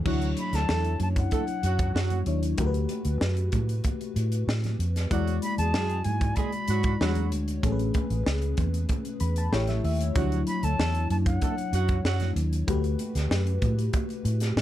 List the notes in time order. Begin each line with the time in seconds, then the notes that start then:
0.05 D2 F#3 D4 E4 F#4 C#5, kick, crash, low conga
0.21 closed hi-hat, muted conga
0.37 B5, closed hi-hat, high conga
0.53 D2 A3 A4 A5, snare, closed hi-hat
0.68 E2 A3 A4, snare, muted conga
0.84 closed hi-hat, muted conga
1.00 F#2 A5, closed hi-hat, high conga, low conga
1.16 F#5, kick, closed hi-hat
1.31 A3 A4, kick, closed hi-hat, muted conga, high conga
1.47 closed hi-hat, muted conga
1.63 F#2 F#3 F#4, closed hi-hat
1.79 kick, closed hi-hat
1.94 F#2 F#3 F#4, snare, muted conga
2.10 closed hi-hat, muted conga, high conga, low conga
2.26 D#2 F#3 D4 E4 C#5, closed hi-hat
2.43 closed hi-hat
2.58 D2 A3 F#4 G4 A#4, kick, closed hi-hat, muted conga, low conga
2.67 B4
2.74 closed hi-hat, muted conga
2.89 closed hi-hat, high conga
3.05 D2, closed hi-hat
3.21 F#2, snare
3.37 closed hi-hat
3.52 A2, kick, closed hi-hat, high conga, low conga
3.69 closed hi-hat
3.84 kick, closed hi-hat, muted conga, high conga
4.01 closed hi-hat, muted conga
4.16 A2, closed hi-hat
4.32 closed hi-hat
4.47 A2, snare
4.64 snare, closed hi-hat, muted conga, high conga, low conga
4.79 F2, closed hi-hat
4.96 snare, closed hi-hat
5.10 E2 F#3 G#3 E4 F#4 D5, kick, closed hi-hat, muted conga, low conga
5.27 closed hi-hat, muted conga
5.42 B5, closed hi-hat, high conga
5.58 E2 G#3 G#4 A5, closed hi-hat
5.74 F#2 G#3 G#4, snare
5.89 closed hi-hat, muted conga
6.04 G#2 G#5, closed hi-hat, high conga, low conga
6.21 kick, closed hi-hat
6.35 G#3 G#4 B5, kick, closed hi-hat, muted conga, high conga
6.52 closed hi-hat, muted conga
6.68 G#2 F#3 F#4, closed hi-hat
6.83 kick, closed hi-hat
7.00 E2 F#3 G3 D4 F#4 C#5, snare, muted conga
7.07 G#3
7.15 closed hi-hat, muted conga, high conga, low conga
7.32 D2, closed hi-hat
7.48 closed hi-hat
7.63 A1 A3 C#4 G#4 A4, kick, closed hi-hat, muted conga, low conga
7.72 B4
7.79 closed hi-hat
7.94 kick, closed hi-hat, high conga
8.10 A1, closed hi-hat
8.26 C#2, snare
8.42 closed hi-hat, muted conga
8.57 E2, kick, closed hi-hat, high conga, low conga
8.74 closed hi-hat
8.89 kick, closed hi-hat, muted conga, high conga
9.05 closed hi-hat
9.20 E2 B5, closed hi-hat
9.36 A5, closed hi-hat
9.52 A1 A3 E4 G4 C#5 G5, snare
9.67 E5, snare, closed hi-hat, high conga, low conga
9.84 D#2 E5, open hi-hat
10.01 closed hi-hat
10.14 D2 F3 F#3 D4 E4 F#4 C#5, kick, closed hi-hat, muted conga, low conga
10.21 F#3
10.32 closed hi-hat, muted conga
10.47 B5, closed hi-hat, high conga
10.63 D2 A3 A4 A5, closed hi-hat
10.79 E2 A3 A4, snare
10.95 closed hi-hat
11.10 F#2 A5, closed hi-hat, high conga, low conga
11.26 F#5, kick, closed hi-hat
11.42 A3 A4, kick, closed hi-hat, muted conga, high conga
11.58 closed hi-hat, muted conga
11.73 F#2 F#3 F#4, closed hi-hat
11.88 kick, closed hi-hat
12.04 F#2 F#3 F#4, snare
12.20 snare, closed hi-hat, high conga, low conga
12.36 D#2, closed hi-hat
12.53 closed hi-hat
12.67 D2 A3 F#4 G4 B4, kick, closed hi-hat, low conga
12.84 closed hi-hat, muted conga
12.99 closed hi-hat, high conga
13.15 D2, snare, closed hi-hat
13.31 F#2, snare
13.47 closed hi-hat, muted conga
13.62 A2, kick, closed hi-hat, high conga, low conga
13.79 closed hi-hat
13.93 kick, closed hi-hat, muted conga, high conga
14.09 closed hi-hat, muted conga
14.25 A2, closed hi-hat
14.40 snare, closed hi-hat
14.56 A2, snare, muted conga